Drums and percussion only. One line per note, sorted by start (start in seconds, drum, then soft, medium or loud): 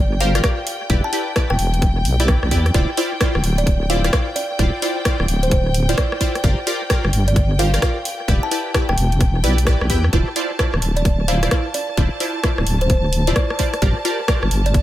0.21 open hi-hat loud
0.35 cross-stick medium
0.35 closed hi-hat medium
0.44 kick loud
0.44 cross-stick loud
0.44 closed hi-hat medium
0.67 open hi-hat loud
0.90 kick loud
0.90 closed hi-hat medium
1.13 open hi-hat loud
1.36 kick loud
1.36 cross-stick loud
1.36 closed hi-hat medium
1.50 cross-stick medium
1.59 open hi-hat loud
1.74 closed hi-hat soft
1.82 kick loud
1.82 closed hi-hat medium
2.05 open hi-hat loud
2.20 closed hi-hat medium
2.28 kick loud
2.28 cross-stick loud
2.28 closed hi-hat medium
2.43 cross-stick medium
2.51 kick medium
2.51 open hi-hat loud
2.66 cross-stick medium
2.66 closed hi-hat soft
2.74 kick loud
2.74 closed hi-hat medium
2.97 open hi-hat loud
3.21 kick loud
3.21 cross-stick loud
3.21 closed hi-hat medium
3.35 cross-stick medium
3.44 open hi-hat loud
3.58 closed hi-hat soft
3.67 kick loud
3.67 closed hi-hat medium
3.90 open hi-hat loud
4.04 cross-stick medium
4.04 closed hi-hat medium
4.13 kick loud
4.13 cross-stick loud
4.13 closed hi-hat medium
4.36 open hi-hat loud
4.59 kick loud
4.59 closed hi-hat medium
4.82 open hi-hat loud
5.05 kick loud
5.05 cross-stick loud
5.05 closed hi-hat medium
5.20 cross-stick medium
5.28 open hi-hat loud
5.43 closed hi-hat soft
5.51 kick loud
5.51 closed hi-hat medium
5.74 open hi-hat loud
5.89 closed hi-hat medium
5.98 kick loud
5.98 cross-stick loud
5.98 closed hi-hat medium
6.12 cross-stick medium
6.21 kick medium
6.21 open hi-hat loud
6.35 cross-stick medium
6.35 closed hi-hat soft
6.44 kick loud
6.44 closed hi-hat medium
6.67 open hi-hat loud
6.90 kick loud
6.90 cross-stick loud
6.90 closed hi-hat medium
7.05 cross-stick medium
7.13 open hi-hat loud
7.28 closed hi-hat soft
7.36 kick loud
7.36 closed hi-hat medium
7.59 open hi-hat loud
7.74 cross-stick medium
7.74 closed hi-hat medium
7.82 kick loud
7.82 cross-stick loud
7.82 closed hi-hat medium
8.05 open hi-hat loud
8.28 kick loud
8.28 closed hi-hat medium
8.51 open hi-hat loud
8.74 kick loud
8.74 cross-stick loud
8.74 closed hi-hat medium
8.89 cross-stick medium
8.98 open hi-hat loud
9.12 closed hi-hat soft
9.21 kick loud
9.21 closed hi-hat medium
9.44 open hi-hat loud
9.58 closed hi-hat medium
9.67 kick loud
9.67 cross-stick loud
9.67 closed hi-hat medium
9.81 cross-stick medium
9.90 kick medium
9.90 open hi-hat loud
10.04 cross-stick medium
10.13 kick loud
10.13 closed hi-hat medium
10.36 open hi-hat loud
10.59 kick loud
10.59 cross-stick loud
10.59 closed hi-hat medium
10.74 cross-stick medium
10.82 open hi-hat loud
10.97 closed hi-hat soft
11.05 kick loud
11.05 closed hi-hat medium
11.28 open hi-hat loud
11.43 cross-stick medium
11.43 closed hi-hat medium
11.51 kick loud
11.51 cross-stick loud
11.51 closed hi-hat medium
11.74 open hi-hat loud
11.97 kick loud
11.97 closed hi-hat medium
12.20 open hi-hat loud
12.44 kick loud
12.44 cross-stick loud
12.44 closed hi-hat medium
12.58 cross-stick medium
12.67 open hi-hat loud
12.81 closed hi-hat soft
12.90 kick loud
12.90 closed hi-hat medium
13.13 open hi-hat loud
13.27 closed hi-hat medium
13.36 kick loud
13.36 cross-stick loud
13.36 closed hi-hat medium
13.50 cross-stick medium
13.59 kick medium
13.59 open hi-hat loud
13.74 cross-stick medium
13.74 closed hi-hat soft
13.82 kick loud
13.82 closed hi-hat medium
14.05 open hi-hat loud
14.28 kick loud
14.28 cross-stick loud
14.28 closed hi-hat medium
14.43 cross-stick medium
14.51 open hi-hat loud
14.66 closed hi-hat soft
14.74 kick loud
14.74 closed hi-hat medium